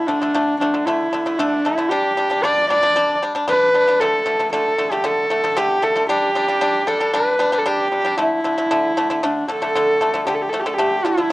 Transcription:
0.07 0.18 D3 medium
0.07 0.19 A3 medium
0.07 0.59 D4 medium
0.22 0.32 D3 medium
0.22 0.32 A3 medium
0.35 0.55 D3 medium
0.35 0.55 A3 medium
0.60 0.71 D3 medium
0.60 0.72 A3 medium
0.60 0.88 D4 medium
0.74 0.84 D3 medium
0.74 0.84 A3 medium
0.86 1.07 D3 medium
0.86 1.08 A3 medium
0.86 1.40 E4 medium
1.13 1.23 D3 medium
1.13 1.24 A3 medium
1.26 1.36 D3 medium
1.26 1.36 A3 medium
1.39 1.60 D3 medium
1.39 1.60 A3 medium
1.39 1.67 D4 medium
1.65 1.75 D3 medium
1.65 1.76 A3 medium
1.65 1.91 E4 medium
1.78 1.88 D3 medium
1.78 1.88 A3 medium
1.90 2.12 G3 medium
1.90 2.12 D4 medium
1.90 2.45 G4 medium
2.17 2.27 G3 medium
2.17 2.28 D4 medium
2.30 2.40 G3 medium
2.30 2.41 D4 medium
2.43 2.64 G3 medium
2.43 2.64 D4 medium
2.43 2.69 D5 medium
2.69 2.80 G3 medium
2.69 2.80 D4 medium
2.69 3.17 D5 medium
2.82 2.93 G3 medium
2.82 2.93 D4 medium
2.96 3.16 G3 medium
2.96 3.16 D4 medium
3.22 3.32 G3 medium
3.22 3.32 D4 medium
3.35 3.45 G3 medium
3.35 3.45 D4 medium
3.47 3.68 G3 medium
3.47 3.69 D4 medium
3.47 4.02 B4 loud
3.74 3.84 G3 medium
3.74 3.84 D4 medium
3.87 3.97 G3 medium
3.87 3.98 D4 medium
4.00 4.21 D3 medium
4.00 4.21 A3 medium
4.00 4.51 A4 medium
4.26 4.36 D3 medium
4.26 4.36 A3 medium
4.39 4.49 D3 medium
4.39 4.50 A3 medium
4.52 4.73 D3 medium
4.52 4.73 A3 medium
4.52 4.93 A4 medium
4.78 4.88 D3 medium
4.78 4.89 A3 medium
4.91 5.01 D3 medium
4.91 5.02 A3 medium
4.91 5.06 G4 medium
5.04 5.24 D3 medium
5.04 5.25 A3 medium
5.04 5.59 A4 medium
5.30 5.40 D3 medium
5.30 5.41 A3 medium
5.44 5.54 D3 medium
5.44 5.54 A3 medium
5.57 5.77 D3 medium
5.57 5.78 A3 loud
5.57 5.85 G4 medium
5.82 5.93 D3 medium
5.82 5.93 A3 medium
5.82 6.08 A4 medium
5.96 6.06 D3 medium
5.96 6.06 A3 medium
6.09 6.30 G3 medium
6.09 6.30 D4 medium
6.09 6.89 G4 medium
6.35 6.45 G3 medium
6.35 6.46 D4 medium
6.49 6.58 G3 medium
6.49 6.59 D4 medium
6.61 6.82 G3 medium
6.61 6.82 D4 medium
6.87 6.97 G3 medium
6.87 6.98 D4 medium
6.87 7.15 A4 medium
7.00 7.11 G3 medium
7.00 7.11 D4 medium
7.13 7.34 G3 medium
7.13 7.35 D4 medium
7.13 7.60 B4 medium
7.39 7.50 G3 medium
7.39 7.50 D4 medium
7.52 7.63 G3 medium
7.52 7.63 D4 medium
7.58 7.69 A4 medium
7.66 7.86 G3 medium
7.66 7.87 D4 loud
7.66 8.19 G4 medium
7.92 8.02 G3 medium
7.92 8.03 D4 medium
8.05 8.15 G3 medium
8.05 8.16 D4 medium
8.18 8.39 D3 medium
8.18 8.39 A3 medium
8.18 9.26 E4 medium
8.44 8.54 D3 medium
8.44 8.55 A3 medium
8.58 8.68 D3 medium
8.58 8.68 A3 medium
8.71 8.91 D3 medium
8.71 8.92 A3 medium
8.97 9.07 D3 medium
8.97 9.07 A3 medium
9.10 9.20 D3 medium
9.10 9.20 A3 medium
9.23 9.43 D3 medium
9.23 9.44 A3 medium
9.23 9.49 D4 medium
9.48 9.59 D3 medium
9.48 9.59 A3 medium
9.48 10.23 A4 medium
9.48 10.24 A4 medium
9.62 9.72 D3 medium
9.62 9.72 A3 medium
9.75 9.96 D3 medium
9.75 9.96 A3 medium
10.01 10.11 D3 medium
10.01 10.12 A3 medium
10.13 10.24 D3 medium
10.13 10.25 A3 medium
10.26 10.48 D3 medium
10.26 10.48 A3 medium
10.26 10.36 G4 medium
10.35 10.43 A4 medium
10.42 10.51 G4 medium
10.49 10.63 D3 medium
10.49 10.61 A4 medium
10.54 10.64 A3 medium
10.59 10.68 G4 medium
10.66 10.76 D3 medium
10.66 10.77 A3 medium
10.66 10.75 A4 medium
10.74 11.07 G4 medium
10.74 11.06 G4 medium
10.78 11.00 D3 medium
10.78 11.00 A3 medium
11.04 11.15 D3 medium
11.04 11.16 A3 medium
11.04 11.32 E4 medium
11.17 11.28 D3 medium
11.17 11.29 A3 medium

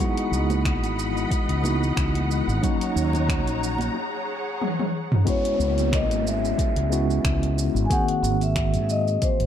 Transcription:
0.00 2.60 E3 medium
0.00 1.59 G#3 medium
0.00 1.60 B3 medium
0.00 1.60 D#4 medium
0.00 1.60 E4 medium
0.00 1.61 F#4 loud
0.00 2.60 D#5 medium
0.00 3.91 F#5 medium
0.00 3.94 F#5 medium
0.00 2.60 B5 medium
0.00 closed hi-hat medium
0.00 shaker soft
0.17 closed hi-hat soft
0.31 0.83 C#2 medium
0.31 shaker medium
0.50 closed hi-hat soft
0.50 high conga medium
0.50 shaker soft
0.65 finger snap loud
0.65 kick loud
0.65 closed hi-hat medium
0.65 shaker soft
0.83 1.25 G#1 medium
0.83 closed hi-hat soft
0.83 shaker soft
0.99 shaker medium
1.17 shaker soft
1.31 kick medium
1.31 closed hi-hat medium
1.31 shaker soft
1.49 1.91 C#2 medium
1.49 closed hi-hat soft
1.62 2.58 G#3 medium
1.62 2.59 B3 medium
1.62 2.59 D#4 medium
1.62 2.60 E4 medium
1.62 2.60 F#4 medium
1.62 high conga medium
1.62 shaker medium
1.83 shaker soft
1.97 2.40 C#2 medium
1.97 finger snap medium
1.97 kick medium
1.97 closed hi-hat medium
1.97 shaker soft
2.15 closed hi-hat soft
2.15 high conga medium
2.31 shaker medium
2.47 2.59 G#1 loud
2.47 shaker soft
2.61 3.92 F#3 medium
2.61 3.93 A#3 medium
2.61 3.93 C#4 medium
2.61 3.93 D#4 medium
2.61 3.93 F#4 loud
2.61 3.93 C#5 medium
2.61 5.24 A#5 loud
2.61 kick medium
2.61 closed hi-hat medium
2.61 low conga medium
2.61 shaker soft
2.81 closed hi-hat soft
2.81 shaker soft
2.96 3.46 D#2 medium
2.96 shaker medium
3.13 closed hi-hat soft
3.13 high conga medium
3.13 shaker soft
3.29 finger snap medium
3.29 kick loud
3.29 closed hi-hat medium
3.29 shaker soft
3.46 3.88 A#1 medium
3.46 closed hi-hat soft
3.46 shaker soft
3.64 shaker medium
3.78 closed hi-hat soft
3.78 high conga medium
3.78 shaker soft
3.94 5.25 G#4 medium
3.94 5.25 C#5 medium
3.94 5.25 F#5 medium
4.62 high tom medium
4.80 high tom medium
5.12 mid tom medium
5.25 6.87 G#3 loud
5.25 6.87 B3 medium
5.25 6.88 C#4 medium
5.25 6.88 E4 medium
5.25 6.88 F#4 loud
5.25 kick medium
5.25 closed hi-hat medium
5.25 downlifter medium
5.25 shaker soft
5.29 5.96 C#5 medium
5.45 closed hi-hat soft
5.59 6.10 C#2 loud
5.59 shaker medium
5.78 closed hi-hat soft
5.78 shaker soft
5.93 6.24 D#5 medium
5.93 finger snap loud
5.93 kick loud
5.93 closed hi-hat medium
5.93 shaker soft
6.10 6.52 G#1 medium
6.10 closed hi-hat soft
6.10 shaker soft
6.27 7.89 E5 loud
6.27 shaker medium
6.45 shaker soft
6.58 kick medium
6.58 closed hi-hat medium
6.58 shaker soft
6.76 7.18 C#2 medium
6.76 closed hi-hat soft
6.90 7.86 G#3 medium
6.90 7.86 B3 medium
6.90 7.87 C#4 medium
6.90 7.87 E4 medium
6.90 7.88 F#4 medium
6.90 shaker medium
7.11 shaker soft
7.24 7.68 C#2 medium
7.24 finger snap medium
7.24 kick loud
7.24 closed hi-hat medium
7.24 shaker soft
7.43 closed hi-hat soft
7.58 shaker medium
7.75 7.86 G#1 medium
7.75 shaker soft
7.85 9.46 A#3 medium
7.85 7.91 G#5 medium
7.90 9.46 D#3 medium
7.90 9.46 C4 medium
7.90 9.46 F#4 medium
7.90 9.46 G#4 loud
7.90 8.39 F#5 loud
7.90 kick loud
7.90 closed hi-hat medium
7.90 shaker soft
8.08 closed hi-hat soft
8.23 8.76 G#1 loud
8.23 shaker medium
8.41 8.83 E5 loud
8.41 closed hi-hat soft
8.41 shaker soft
8.56 finger snap loud
8.56 kick loud
8.56 closed hi-hat medium
8.56 shaker soft
8.74 9.16 G#2 medium
8.74 closed hi-hat soft
8.74 shaker soft
8.84 8.90 E5 medium
8.89 9.24 D#5 loud
8.89 shaker medium
9.08 shaker soft
9.22 9.38 C5 loud
9.22 kick loud
9.22 closed hi-hat medium
9.22 shaker soft
9.40 9.46 G#1 medium
9.40 closed hi-hat soft

